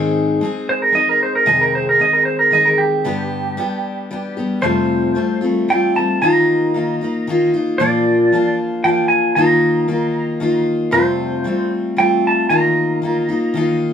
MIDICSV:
0, 0, Header, 1, 3, 480
1, 0, Start_track
1, 0, Tempo, 528634
1, 1334, Time_signature, 3, 2, 24, 8
1, 6609, Tempo, 523104
1, 12715, End_track
2, 0, Start_track
2, 0, Title_t, "Electric slide guitar"
2, 0, Program_c, 0, 29
2, 629, Note_on_c, 0, 72, 104
2, 737, Note_off_c, 0, 72, 0
2, 746, Note_on_c, 0, 70, 75
2, 856, Note_off_c, 0, 70, 0
2, 863, Note_on_c, 0, 75, 94
2, 975, Note_off_c, 0, 75, 0
2, 991, Note_on_c, 0, 70, 85
2, 1099, Note_off_c, 0, 70, 0
2, 1114, Note_on_c, 0, 72, 85
2, 1220, Note_off_c, 0, 72, 0
2, 1229, Note_on_c, 0, 70, 94
2, 1335, Note_on_c, 0, 75, 85
2, 1338, Note_off_c, 0, 70, 0
2, 1451, Note_off_c, 0, 75, 0
2, 1463, Note_on_c, 0, 70, 102
2, 1576, Note_off_c, 0, 70, 0
2, 1590, Note_on_c, 0, 72, 91
2, 1699, Note_off_c, 0, 72, 0
2, 1715, Note_on_c, 0, 70, 87
2, 1822, Note_off_c, 0, 70, 0
2, 1828, Note_on_c, 0, 75, 88
2, 1935, Note_on_c, 0, 70, 84
2, 1938, Note_off_c, 0, 75, 0
2, 2042, Note_off_c, 0, 70, 0
2, 2046, Note_on_c, 0, 72, 96
2, 2166, Note_off_c, 0, 72, 0
2, 2170, Note_on_c, 0, 70, 84
2, 2289, Note_off_c, 0, 70, 0
2, 2299, Note_on_c, 0, 75, 94
2, 2409, Note_on_c, 0, 70, 97
2, 2414, Note_off_c, 0, 75, 0
2, 2524, Note_on_c, 0, 67, 103
2, 2529, Note_off_c, 0, 70, 0
2, 3933, Note_off_c, 0, 67, 0
2, 4196, Note_on_c, 0, 72, 104
2, 4888, Note_off_c, 0, 72, 0
2, 5178, Note_on_c, 0, 79, 85
2, 5410, Note_off_c, 0, 79, 0
2, 5414, Note_on_c, 0, 81, 97
2, 5643, Note_off_c, 0, 81, 0
2, 5647, Note_on_c, 0, 82, 95
2, 6808, Note_off_c, 0, 82, 0
2, 7071, Note_on_c, 0, 74, 103
2, 7766, Note_off_c, 0, 74, 0
2, 8043, Note_on_c, 0, 79, 87
2, 8261, Note_off_c, 0, 79, 0
2, 8264, Note_on_c, 0, 80, 96
2, 8510, Note_off_c, 0, 80, 0
2, 8513, Note_on_c, 0, 82, 99
2, 9687, Note_off_c, 0, 82, 0
2, 9956, Note_on_c, 0, 72, 101
2, 10647, Note_off_c, 0, 72, 0
2, 10927, Note_on_c, 0, 79, 92
2, 11176, Note_off_c, 0, 79, 0
2, 11190, Note_on_c, 0, 81, 97
2, 11391, Note_off_c, 0, 81, 0
2, 11395, Note_on_c, 0, 82, 99
2, 12561, Note_off_c, 0, 82, 0
2, 12715, End_track
3, 0, Start_track
3, 0, Title_t, "Steel-string acoustic guitar"
3, 0, Program_c, 1, 25
3, 0, Note_on_c, 1, 44, 85
3, 0, Note_on_c, 1, 51, 80
3, 0, Note_on_c, 1, 56, 84
3, 0, Note_on_c, 1, 60, 97
3, 0, Note_on_c, 1, 63, 87
3, 0, Note_on_c, 1, 68, 96
3, 369, Note_off_c, 1, 56, 0
3, 370, Note_off_c, 1, 44, 0
3, 372, Note_off_c, 1, 51, 0
3, 373, Note_on_c, 1, 56, 67
3, 383, Note_off_c, 1, 60, 0
3, 387, Note_on_c, 1, 60, 69
3, 393, Note_off_c, 1, 63, 0
3, 397, Note_on_c, 1, 63, 68
3, 402, Note_off_c, 1, 68, 0
3, 406, Note_on_c, 1, 68, 81
3, 828, Note_off_c, 1, 56, 0
3, 839, Note_off_c, 1, 60, 0
3, 839, Note_on_c, 1, 56, 62
3, 844, Note_off_c, 1, 63, 0
3, 850, Note_on_c, 1, 60, 55
3, 854, Note_on_c, 1, 63, 69
3, 855, Note_off_c, 1, 68, 0
3, 866, Note_on_c, 1, 68, 68
3, 1323, Note_off_c, 1, 56, 0
3, 1324, Note_on_c, 1, 41, 78
3, 1326, Note_on_c, 1, 48, 86
3, 1330, Note_off_c, 1, 60, 0
3, 1333, Note_on_c, 1, 51, 76
3, 1334, Note_off_c, 1, 68, 0
3, 1334, Note_on_c, 1, 56, 86
3, 1335, Note_off_c, 1, 63, 0
3, 1341, Note_on_c, 1, 60, 80
3, 1345, Note_on_c, 1, 68, 90
3, 1795, Note_off_c, 1, 51, 0
3, 1801, Note_off_c, 1, 56, 0
3, 1806, Note_on_c, 1, 51, 60
3, 1810, Note_off_c, 1, 41, 0
3, 1811, Note_off_c, 1, 48, 0
3, 1812, Note_off_c, 1, 60, 0
3, 1812, Note_on_c, 1, 56, 58
3, 1821, Note_off_c, 1, 68, 0
3, 1823, Note_on_c, 1, 60, 71
3, 1831, Note_on_c, 1, 68, 61
3, 2264, Note_off_c, 1, 51, 0
3, 2275, Note_on_c, 1, 51, 61
3, 2278, Note_off_c, 1, 56, 0
3, 2287, Note_off_c, 1, 60, 0
3, 2289, Note_on_c, 1, 56, 63
3, 2295, Note_off_c, 1, 68, 0
3, 2297, Note_on_c, 1, 60, 68
3, 2306, Note_on_c, 1, 68, 67
3, 2764, Note_on_c, 1, 43, 77
3, 2766, Note_off_c, 1, 51, 0
3, 2768, Note_on_c, 1, 50, 77
3, 2769, Note_off_c, 1, 56, 0
3, 2772, Note_on_c, 1, 59, 80
3, 2775, Note_on_c, 1, 55, 76
3, 2777, Note_off_c, 1, 60, 0
3, 2778, Note_off_c, 1, 68, 0
3, 2782, Note_on_c, 1, 62, 81
3, 2782, Note_on_c, 1, 67, 97
3, 3231, Note_off_c, 1, 55, 0
3, 3239, Note_off_c, 1, 59, 0
3, 3242, Note_on_c, 1, 55, 68
3, 3250, Note_off_c, 1, 43, 0
3, 3250, Note_on_c, 1, 59, 72
3, 3252, Note_off_c, 1, 50, 0
3, 3253, Note_off_c, 1, 62, 0
3, 3259, Note_off_c, 1, 67, 0
3, 3264, Note_on_c, 1, 62, 72
3, 3268, Note_on_c, 1, 67, 75
3, 3717, Note_off_c, 1, 55, 0
3, 3723, Note_off_c, 1, 59, 0
3, 3728, Note_on_c, 1, 55, 69
3, 3734, Note_on_c, 1, 59, 66
3, 3736, Note_off_c, 1, 62, 0
3, 3737, Note_off_c, 1, 67, 0
3, 3747, Note_on_c, 1, 62, 81
3, 3748, Note_on_c, 1, 67, 76
3, 3955, Note_off_c, 1, 67, 0
3, 3966, Note_off_c, 1, 62, 0
3, 3966, Note_on_c, 1, 67, 53
3, 3972, Note_off_c, 1, 55, 0
3, 3973, Note_off_c, 1, 59, 0
3, 3976, Note_on_c, 1, 62, 53
3, 3983, Note_on_c, 1, 59, 53
3, 3993, Note_on_c, 1, 55, 48
3, 4192, Note_on_c, 1, 41, 82
3, 4194, Note_off_c, 1, 55, 0
3, 4201, Note_on_c, 1, 48, 81
3, 4205, Note_off_c, 1, 59, 0
3, 4205, Note_on_c, 1, 55, 75
3, 4208, Note_on_c, 1, 57, 75
3, 4210, Note_off_c, 1, 62, 0
3, 4210, Note_off_c, 1, 67, 0
3, 4214, Note_on_c, 1, 60, 80
3, 4214, Note_on_c, 1, 65, 88
3, 4664, Note_off_c, 1, 55, 0
3, 4673, Note_off_c, 1, 57, 0
3, 4675, Note_on_c, 1, 55, 58
3, 4680, Note_off_c, 1, 60, 0
3, 4683, Note_off_c, 1, 41, 0
3, 4684, Note_on_c, 1, 57, 64
3, 4687, Note_off_c, 1, 48, 0
3, 4691, Note_on_c, 1, 60, 61
3, 4695, Note_off_c, 1, 65, 0
3, 4698, Note_on_c, 1, 65, 69
3, 4901, Note_off_c, 1, 65, 0
3, 4911, Note_on_c, 1, 65, 57
3, 4912, Note_off_c, 1, 60, 0
3, 4923, Note_on_c, 1, 60, 54
3, 4924, Note_off_c, 1, 55, 0
3, 4926, Note_off_c, 1, 57, 0
3, 4937, Note_on_c, 1, 57, 55
3, 4942, Note_on_c, 1, 55, 48
3, 5151, Note_off_c, 1, 55, 0
3, 5162, Note_off_c, 1, 65, 0
3, 5162, Note_on_c, 1, 55, 61
3, 5164, Note_off_c, 1, 57, 0
3, 5167, Note_off_c, 1, 60, 0
3, 5175, Note_on_c, 1, 57, 59
3, 5178, Note_on_c, 1, 60, 70
3, 5193, Note_on_c, 1, 65, 66
3, 5393, Note_off_c, 1, 65, 0
3, 5404, Note_on_c, 1, 65, 53
3, 5407, Note_off_c, 1, 55, 0
3, 5409, Note_off_c, 1, 60, 0
3, 5413, Note_off_c, 1, 57, 0
3, 5420, Note_on_c, 1, 60, 50
3, 5429, Note_on_c, 1, 57, 43
3, 5435, Note_on_c, 1, 55, 44
3, 5639, Note_off_c, 1, 55, 0
3, 5643, Note_on_c, 1, 51, 79
3, 5647, Note_off_c, 1, 65, 0
3, 5648, Note_off_c, 1, 57, 0
3, 5651, Note_on_c, 1, 58, 77
3, 5654, Note_off_c, 1, 60, 0
3, 5657, Note_on_c, 1, 63, 87
3, 5665, Note_on_c, 1, 65, 91
3, 6112, Note_off_c, 1, 51, 0
3, 6122, Note_on_c, 1, 51, 62
3, 6129, Note_off_c, 1, 58, 0
3, 6129, Note_off_c, 1, 63, 0
3, 6133, Note_on_c, 1, 58, 59
3, 6140, Note_on_c, 1, 63, 66
3, 6145, Note_off_c, 1, 65, 0
3, 6148, Note_on_c, 1, 65, 72
3, 6356, Note_off_c, 1, 65, 0
3, 6364, Note_off_c, 1, 51, 0
3, 6367, Note_on_c, 1, 65, 58
3, 6370, Note_off_c, 1, 58, 0
3, 6370, Note_off_c, 1, 63, 0
3, 6381, Note_on_c, 1, 63, 51
3, 6391, Note_on_c, 1, 58, 51
3, 6604, Note_on_c, 1, 51, 77
3, 6606, Note_off_c, 1, 65, 0
3, 6609, Note_off_c, 1, 58, 0
3, 6613, Note_off_c, 1, 63, 0
3, 6620, Note_on_c, 1, 58, 74
3, 6629, Note_on_c, 1, 63, 79
3, 6632, Note_on_c, 1, 65, 78
3, 6834, Note_off_c, 1, 65, 0
3, 6845, Note_on_c, 1, 65, 61
3, 6846, Note_off_c, 1, 51, 0
3, 6851, Note_off_c, 1, 63, 0
3, 6854, Note_off_c, 1, 58, 0
3, 6862, Note_on_c, 1, 63, 55
3, 6870, Note_on_c, 1, 58, 47
3, 7083, Note_off_c, 1, 58, 0
3, 7083, Note_on_c, 1, 46, 78
3, 7087, Note_off_c, 1, 65, 0
3, 7087, Note_on_c, 1, 53, 84
3, 7094, Note_on_c, 1, 58, 82
3, 7095, Note_off_c, 1, 63, 0
3, 7098, Note_on_c, 1, 62, 85
3, 7099, Note_on_c, 1, 65, 91
3, 7564, Note_off_c, 1, 53, 0
3, 7567, Note_off_c, 1, 46, 0
3, 7568, Note_on_c, 1, 53, 64
3, 7574, Note_off_c, 1, 58, 0
3, 7575, Note_off_c, 1, 62, 0
3, 7577, Note_on_c, 1, 58, 67
3, 7589, Note_off_c, 1, 65, 0
3, 7589, Note_on_c, 1, 62, 70
3, 7592, Note_on_c, 1, 65, 76
3, 8042, Note_off_c, 1, 53, 0
3, 8045, Note_off_c, 1, 58, 0
3, 8045, Note_on_c, 1, 53, 71
3, 8055, Note_off_c, 1, 62, 0
3, 8056, Note_on_c, 1, 58, 63
3, 8066, Note_on_c, 1, 62, 63
3, 8075, Note_off_c, 1, 65, 0
3, 8079, Note_on_c, 1, 65, 74
3, 8517, Note_off_c, 1, 58, 0
3, 8518, Note_off_c, 1, 53, 0
3, 8522, Note_on_c, 1, 51, 87
3, 8528, Note_on_c, 1, 58, 89
3, 8536, Note_off_c, 1, 62, 0
3, 8538, Note_off_c, 1, 65, 0
3, 8540, Note_on_c, 1, 63, 84
3, 8541, Note_on_c, 1, 65, 93
3, 8984, Note_off_c, 1, 51, 0
3, 8988, Note_off_c, 1, 58, 0
3, 8995, Note_on_c, 1, 51, 63
3, 8998, Note_off_c, 1, 63, 0
3, 8999, Note_on_c, 1, 58, 67
3, 9009, Note_on_c, 1, 63, 68
3, 9017, Note_off_c, 1, 65, 0
3, 9021, Note_on_c, 1, 65, 65
3, 9463, Note_off_c, 1, 51, 0
3, 9472, Note_off_c, 1, 58, 0
3, 9474, Note_on_c, 1, 51, 73
3, 9483, Note_off_c, 1, 63, 0
3, 9483, Note_on_c, 1, 58, 65
3, 9494, Note_on_c, 1, 63, 74
3, 9496, Note_off_c, 1, 65, 0
3, 9499, Note_on_c, 1, 65, 72
3, 9943, Note_on_c, 1, 41, 80
3, 9948, Note_off_c, 1, 51, 0
3, 9949, Note_off_c, 1, 58, 0
3, 9950, Note_on_c, 1, 48, 87
3, 9951, Note_on_c, 1, 55, 81
3, 9953, Note_on_c, 1, 57, 81
3, 9957, Note_off_c, 1, 63, 0
3, 9961, Note_on_c, 1, 60, 79
3, 9964, Note_off_c, 1, 65, 0
3, 9968, Note_on_c, 1, 65, 86
3, 10418, Note_off_c, 1, 55, 0
3, 10428, Note_off_c, 1, 57, 0
3, 10429, Note_on_c, 1, 55, 60
3, 10437, Note_off_c, 1, 41, 0
3, 10439, Note_on_c, 1, 57, 64
3, 10441, Note_off_c, 1, 48, 0
3, 10442, Note_off_c, 1, 60, 0
3, 10453, Note_on_c, 1, 60, 63
3, 10454, Note_off_c, 1, 65, 0
3, 10457, Note_on_c, 1, 65, 69
3, 10898, Note_off_c, 1, 55, 0
3, 10909, Note_on_c, 1, 55, 65
3, 10915, Note_off_c, 1, 57, 0
3, 10919, Note_off_c, 1, 60, 0
3, 10926, Note_on_c, 1, 57, 64
3, 10930, Note_on_c, 1, 60, 67
3, 10935, Note_off_c, 1, 65, 0
3, 10939, Note_on_c, 1, 65, 65
3, 11394, Note_off_c, 1, 55, 0
3, 11398, Note_off_c, 1, 57, 0
3, 11398, Note_on_c, 1, 51, 70
3, 11401, Note_off_c, 1, 60, 0
3, 11402, Note_on_c, 1, 58, 78
3, 11404, Note_on_c, 1, 63, 82
3, 11411, Note_off_c, 1, 65, 0
3, 11415, Note_on_c, 1, 65, 81
3, 11865, Note_off_c, 1, 51, 0
3, 11876, Note_on_c, 1, 51, 57
3, 11884, Note_off_c, 1, 58, 0
3, 11885, Note_off_c, 1, 63, 0
3, 11888, Note_on_c, 1, 58, 61
3, 11898, Note_on_c, 1, 63, 59
3, 11900, Note_off_c, 1, 65, 0
3, 11904, Note_on_c, 1, 65, 65
3, 12110, Note_off_c, 1, 65, 0
3, 12121, Note_off_c, 1, 51, 0
3, 12121, Note_off_c, 1, 63, 0
3, 12121, Note_on_c, 1, 65, 56
3, 12127, Note_off_c, 1, 58, 0
3, 12132, Note_on_c, 1, 63, 55
3, 12151, Note_on_c, 1, 58, 49
3, 12351, Note_on_c, 1, 51, 73
3, 12355, Note_off_c, 1, 58, 0
3, 12363, Note_off_c, 1, 65, 0
3, 12366, Note_on_c, 1, 58, 74
3, 12369, Note_off_c, 1, 63, 0
3, 12379, Note_on_c, 1, 63, 75
3, 12382, Note_on_c, 1, 65, 81
3, 12715, Note_off_c, 1, 51, 0
3, 12715, Note_off_c, 1, 58, 0
3, 12715, Note_off_c, 1, 63, 0
3, 12715, Note_off_c, 1, 65, 0
3, 12715, End_track
0, 0, End_of_file